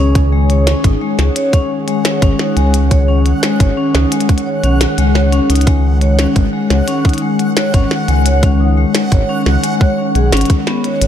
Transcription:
0.00 0.75 C#2 loud
0.00 11.07 D#3 medium
0.00 11.07 G#3 medium
0.00 11.01 C#4 medium
0.00 11.07 G#4 medium
0.00 11.01 C#5 medium
0.00 11.07 F#5 medium
0.15 kick loud
0.15 closed hi-hat medium
0.32 0.42 G#3 medium
0.50 0.59 C#5 medium
0.50 closed hi-hat soft
0.67 0.76 C#4 loud
0.67 snare loud
0.67 closed hi-hat medium
0.84 0.96 G#1 medium
0.84 0.94 D#4 medium
0.84 kick loud
0.84 closed hi-hat medium
1.01 1.11 G#3 loud
1.19 1.30 C#2 medium
1.19 snare medium
1.19 closed hi-hat soft
1.36 1.45 C#5 medium
1.36 closed hi-hat medium
1.53 1.62 C#4 loud
1.53 kick loud
1.53 closed hi-hat medium
1.88 1.97 G#3 loud
1.88 closed hi-hat soft
2.05 2.14 C#5 medium
2.05 snare loud
2.05 closed hi-hat medium
2.22 2.34 G#1 medium
2.22 2.31 C#4 medium
2.22 kick loud
2.22 closed hi-hat medium
2.39 2.49 D#4 medium
2.39 snare medium
2.57 3.34 C#2 medium
2.57 2.66 G#3 medium
2.57 closed hi-hat soft
2.74 closed hi-hat medium
2.91 3.00 C#5 medium
2.91 kick loud
2.91 closed hi-hat medium
3.08 3.18 C#4 loud
3.26 closed hi-hat soft
3.43 3.52 G#3 loud
3.43 snare loud
3.43 closed hi-hat medium
3.60 3.72 G#1 medium
3.60 3.69 C#5 medium
3.60 kick loud
3.60 closed hi-hat medium
3.77 3.87 C#4 loud
3.95 4.06 C#2 medium
3.95 4.04 D#4 medium
3.95 snare medium
3.95 closed hi-hat soft
4.12 4.21 G#3 medium
4.12 closed hi-hat medium
4.21 closed hi-hat medium
4.29 kick loud
4.29 closed hi-hat medium
4.38 closed hi-hat soft
4.46 4.56 C#5 medium
4.64 4.86 B1 medium
4.64 4.73 C#4 loud
4.64 closed hi-hat soft
4.81 snare loud
4.81 closed hi-hat medium
4.98 5.40 C#2 medium
4.98 5.07 G#3 loud
4.98 closed hi-hat medium
5.15 5.25 C#5 medium
5.15 snare medium
5.32 5.42 C#4 loud
5.32 closed hi-hat soft
5.50 6.27 C#2 loud
5.50 5.59 D#4 medium
5.50 closed hi-hat medium
5.55 closed hi-hat medium
5.61 closed hi-hat medium
5.67 5.76 G#3 loud
5.67 kick loud
5.67 closed hi-hat medium
6.01 6.11 C#5 medium
6.01 closed hi-hat soft
6.19 6.28 C#4 loud
6.19 snare loud
6.19 closed hi-hat medium
6.36 6.47 G#1 medium
6.36 kick loud
6.36 closed hi-hat medium
6.53 6.63 G#3 loud
6.70 6.82 C#2 medium
6.70 6.80 C#5 medium
6.70 snare medium
6.70 closed hi-hat soft
6.88 6.97 C#4 loud
6.88 closed hi-hat medium
7.05 7.14 D#4 medium
7.05 kick loud
7.05 closed hi-hat soft
7.09 closed hi-hat soft
7.14 closed hi-hat soft
7.18 closed hi-hat soft
7.22 7.31 G#3 loud
7.39 closed hi-hat soft
7.57 7.66 C#5 medium
7.57 snare loud
7.57 closed hi-hat medium
7.74 7.85 G#1 medium
7.74 7.83 C#4 medium
7.74 kick loud
7.74 closed hi-hat medium
7.91 snare medium
8.08 8.85 C#2 medium
8.08 8.18 G#3 medium
8.08 closed hi-hat soft
8.26 8.35 C#5 medium
8.26 closed hi-hat medium
8.43 8.52 C#4 loud
8.43 kick loud
8.43 closed hi-hat medium
8.60 8.69 D#4 medium
8.77 8.87 G#3 loud
8.95 snare loud
8.95 closed hi-hat medium
9.12 9.23 G#1 medium
9.12 9.21 C#5 medium
9.12 kick loud
9.12 closed hi-hat soft
9.29 9.38 C#4 loud
9.46 9.58 C#2 medium
9.46 snare medium
9.64 9.73 G#3 medium
9.64 closed hi-hat medium
9.81 9.90 C#5 medium
9.81 kick loud
9.98 10.04 C#4 medium
10.15 10.32 B1 medium
10.15 10.29 G#4 medium
10.15 closed hi-hat soft
10.32 10.44 G#1 medium
10.32 10.46 C#4 loud
10.32 snare loud
10.32 closed hi-hat medium
10.37 closed hi-hat medium
10.41 closed hi-hat soft
10.45 closed hi-hat soft
10.50 kick loud
10.50 closed hi-hat soft
10.67 10.76 B3 medium
10.67 snare medium
10.84 10.94 C#5 medium
10.84 closed hi-hat soft
11.02 11.07 G#1 medium
11.02 closed hi-hat medium

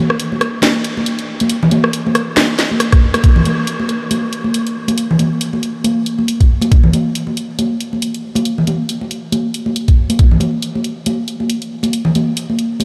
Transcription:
0.10 cross-stick medium
0.20 closed hi-hat medium
0.32 high conga medium
0.41 cross-stick medium
0.41 closed hi-hat medium
0.62 snare loud
0.62 closed hi-hat medium
0.62 high conga medium
0.84 closed hi-hat medium
0.97 high conga medium
1.06 closed hi-hat medium
1.19 closed hi-hat soft
1.40 closed hi-hat medium
1.40 high conga medium
1.50 closed hi-hat medium
1.63 low conga medium
1.71 closed hi-hat medium
1.71 high conga loud
1.84 cross-stick medium
1.93 closed hi-hat medium
2.07 high conga medium
2.15 cross-stick medium
2.15 closed hi-hat medium
2.37 snare loud
2.37 closed hi-hat medium
2.37 high conga medium
2.59 snare medium
2.59 closed hi-hat medium
2.71 high conga medium
2.80 cross-stick medium
2.80 closed hi-hat medium
2.92 kick medium
2.92 cross-stick medium
2.92 closed hi-hat soft
3.14 cross-stick medium
3.14 closed hi-hat medium
3.14 high conga medium
3.24 kick loud
3.24 closed hi-hat medium
3.36 low conga medium
3.45 closed hi-hat soft
3.45 high conga medium
3.67 closed hi-hat medium
3.80 high conga medium
3.89 closed hi-hat soft
4.11 closed hi-hat medium
4.11 high conga medium
4.33 closed hi-hat soft
4.44 high conga medium
4.54 closed hi-hat medium
4.67 closed hi-hat soft
4.88 closed hi-hat medium
4.88 high conga medium
4.98 closed hi-hat medium
5.11 low conga medium
5.19 closed hi-hat soft
5.19 high conga medium
5.41 closed hi-hat medium
5.53 high conga medium
5.63 closed hi-hat soft
5.84 closed hi-hat medium
5.84 high conga medium
6.06 closed hi-hat soft
6.19 high conga medium
6.28 closed hi-hat medium
6.40 kick medium
6.40 closed hi-hat soft
6.62 closed hi-hat medium
6.62 high conga medium
6.72 kick loud
6.72 closed hi-hat medium
6.84 low conga medium
6.93 closed hi-hat soft
6.93 high conga medium
7.15 closed hi-hat medium
7.27 high conga medium
7.37 closed hi-hat soft
7.59 closed hi-hat medium
7.59 high conga medium
7.80 closed hi-hat soft
7.93 high conga medium
8.02 closed hi-hat medium
8.14 closed hi-hat soft
8.35 closed hi-hat medium
8.35 high conga medium
8.45 closed hi-hat medium
8.58 low conga medium
8.67 closed hi-hat soft
8.67 high conga medium
8.89 closed hi-hat medium
9.01 high conga medium
9.11 closed hi-hat soft
9.32 closed hi-hat medium
9.32 high conga medium
9.54 closed hi-hat soft
9.66 high conga medium
9.76 closed hi-hat medium
9.88 kick medium
9.88 closed hi-hat soft
10.10 closed hi-hat medium
10.10 high conga medium
10.19 kick loud
10.19 closed hi-hat medium
10.31 low conga medium
10.40 closed hi-hat soft
10.40 high conga medium
10.62 closed hi-hat medium
10.75 high conga medium
10.84 closed hi-hat soft
11.06 closed hi-hat medium
11.06 high conga medium
11.28 closed hi-hat soft
11.40 high conga medium
11.50 closed hi-hat medium
11.62 closed hi-hat soft
11.83 closed hi-hat medium
11.83 high conga medium
11.93 closed hi-hat medium
12.05 low conga medium
12.15 closed hi-hat soft
12.15 high conga medium
12.37 closed hi-hat medium
12.50 high conga medium
12.59 closed hi-hat soft
12.80 closed hi-hat medium
12.80 high conga medium

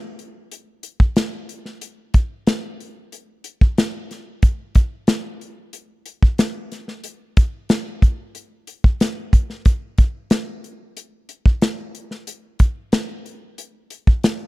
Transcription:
0.19 closed hi-hat soft
0.51 closed hi-hat medium
0.83 closed hi-hat medium
1.00 kick medium
1.16 snare loud
1.16 closed hi-hat medium
1.49 closed hi-hat medium
1.65 snare soft
1.81 closed hi-hat medium
2.14 kick medium
2.14 closed hi-hat medium
2.47 snare loud
2.47 closed hi-hat medium
2.80 closed hi-hat medium
3.12 closed hi-hat medium
3.44 closed hi-hat medium
3.61 kick medium
3.78 snare loud
3.78 closed hi-hat medium
4.11 snare soft
4.11 closed hi-hat medium
4.42 kick medium
4.42 closed hi-hat medium
4.75 kick medium
4.75 closed hi-hat medium
5.07 snare loud
5.07 closed hi-hat medium
5.41 closed hi-hat soft
5.73 closed hi-hat medium
6.06 closed hi-hat medium
6.23 kick medium
6.38 snare loud
6.38 closed hi-hat medium
6.72 snare soft
6.72 closed hi-hat medium
6.88 snare soft
7.04 closed hi-hat medium
7.37 kick medium
7.37 closed hi-hat medium
7.69 snare loud
7.69 closed hi-hat medium
8.02 kick medium
8.02 closed hi-hat medium
8.35 closed hi-hat medium
8.67 closed hi-hat medium
8.84 kick medium
9.00 snare loud
9.00 closed hi-hat medium
9.33 kick medium
9.33 closed hi-hat medium
9.50 snare soft
9.65 kick medium
9.65 closed hi-hat medium
9.98 kick medium
9.98 closed hi-hat medium
10.30 snare loud
10.30 closed hi-hat medium
10.64 closed hi-hat medium
10.97 closed hi-hat medium
11.29 closed hi-hat medium
11.46 kick medium
11.62 snare loud
11.62 closed hi-hat medium
11.95 closed hi-hat medium
12.11 snare soft
12.27 closed hi-hat medium
12.59 kick medium
12.59 closed hi-hat medium
12.92 snare loud
12.92 closed hi-hat medium
13.26 closed hi-hat medium
13.58 closed hi-hat medium
13.90 closed hi-hat medium
14.07 kick medium
14.24 snare loud
14.24 closed hi-hat medium

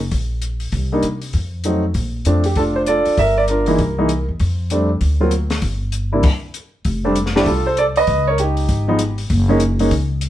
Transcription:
0.11 0.70 A#1 medium
0.11 kick soft
0.11 open hi-hat soft
0.42 closed hi-hat soft
0.60 open hi-hat soft
0.72 1.01 C2 medium
0.72 kick soft
0.72 open hi-hat soft
0.92 1.03 G3 medium
0.92 1.03 A#3 soft
0.92 1.03 D4 medium
0.92 1.03 D#4 medium
1.03 closed hi-hat soft
1.22 open hi-hat soft
1.33 1.92 F2 medium
1.33 kick soft
1.33 open hi-hat soft
1.64 1.82 F#3 medium
1.64 1.82 A3 soft
1.64 1.82 C4 soft
1.64 1.82 D#4 medium
1.64 closed hi-hat soft
1.94 2.24 A#1 medium
1.94 kick soft
1.94 open hi-hat soft
2.25 2.54 F2 medium
2.25 2.43 F3 medium
2.25 2.43 A3 medium
2.25 2.43 C4 soft
2.25 2.43 D4 medium
2.25 closed hi-hat soft
2.44 2.57 G4 medium
2.44 open hi-hat soft
2.55 3.02 F1 medium
2.55 3.15 D4 medium
2.55 2.87 F4 medium
2.55 2.62 A4 medium
2.55 kick soft
2.55 open hi-hat soft
2.76 2.81 C5 medium
2.86 3.16 F4 medium
2.86 3.17 A4 medium
2.86 3.19 D5 medium
2.86 closed hi-hat soft
3.05 muted upright bass stroke soft
3.05 open hi-hat soft
3.17 3.76 G1 medium
3.17 3.48 A#4 medium
3.17 3.38 E5 medium
3.17 kick soft
3.17 open hi-hat soft
3.38 3.43 D5 medium
3.48 3.78 D4 soft
3.48 3.78 F4 medium
3.48 4.25 A#4 medium
3.48 closed hi-hat soft
3.66 3.78 E3 medium
3.66 3.78 G#3 medium
3.66 3.78 A#3 medium
3.66 3.78 D#4 medium
3.66 open hi-hat soft
3.79 4.25 C2 medium
3.79 kick soft
3.79 open hi-hat soft
3.98 4.09 E3 medium
3.98 4.09 G#3 medium
3.98 4.09 A#3 medium
3.98 4.09 D#4 medium
4.09 closed hi-hat soft
4.29 4.39 E2 medium
4.40 4.98 F2 medium
4.40 kick soft
4.40 open hi-hat soft
4.70 4.88 G3 medium
4.70 4.88 A3 soft
4.70 4.88 C4 soft
4.70 4.88 D4 medium
4.70 closed hi-hat soft
5.01 5.59 D2 medium
5.01 kick soft
5.01 open hi-hat soft
5.21 5.31 F#3 medium
5.21 5.31 A#3 medium
5.21 5.31 C4 medium
5.21 5.31 F4 medium
5.31 closed hi-hat soft
5.50 snare soft
5.50 open hi-hat soft
5.62 6.21 G1 medium
5.62 kick soft
5.62 open hi-hat soft
5.92 closed hi-hat soft
6.12 6.23 C3 medium
6.12 6.23 G3 medium
6.12 6.23 A#3 medium
6.12 6.23 D4 medium
6.12 6.23 E4 medium
6.23 kick medium
6.23 open hi-hat soft
6.23 crash medium
6.54 closed hi-hat soft
6.85 7.43 F1 medium
6.85 kick soft
6.85 open hi-hat soft
7.04 7.15 G3 medium
7.04 7.15 A3 medium
7.04 7.15 C4 medium
7.04 7.15 D4 medium
7.16 closed hi-hat soft
7.26 snare soft
7.35 7.45 G3 medium
7.35 7.46 A3 medium
7.35 7.46 C4 medium
7.35 7.46 D4 medium
7.35 7.47 E4 medium
7.35 7.46 G4 medium
7.35 snare soft
7.46 8.05 C2 medium
7.46 7.65 F4 medium
7.46 7.66 A4 medium
7.46 kick soft
7.46 open hi-hat soft
7.66 7.78 A4 medium
7.66 7.77 C5 medium
7.77 7.85 A4 medium
7.77 7.83 D5 medium
7.77 closed hi-hat soft
7.96 8.26 B4 medium
7.96 8.28 D#5 loud
7.96 open hi-hat soft
8.07 8.66 C#2 medium
8.07 kick soft
8.07 open hi-hat soft
8.27 8.39 A#4 medium
8.27 8.38 C#5 medium
8.38 9.15 G4 medium
8.38 closed hi-hat soft
8.42 8.87 D#4 medium
8.57 open hi-hat soft
8.69 9.27 G#1 medium
8.69 kick soft
8.69 open hi-hat soft
8.88 8.98 F3 medium
8.88 8.99 G#3 medium
8.88 8.99 B3 medium
8.88 8.99 D#4 medium
8.99 closed hi-hat soft
9.18 open hi-hat soft
9.30 9.88 F#1 medium
9.30 kick soft
9.30 open hi-hat soft
9.49 9.59 G#3 medium
9.49 9.60 A#3 medium
9.49 9.60 C#4 medium
9.49 9.60 D#4 medium
9.60 closed hi-hat soft
9.79 9.90 G#3 medium
9.79 9.90 A#3 medium
9.79 9.90 C#4 medium
9.79 9.90 D#4 medium
9.79 open hi-hat soft
9.91 10.29 C#2 medium
9.91 kick soft
9.91 open hi-hat soft
10.21 closed hi-hat medium

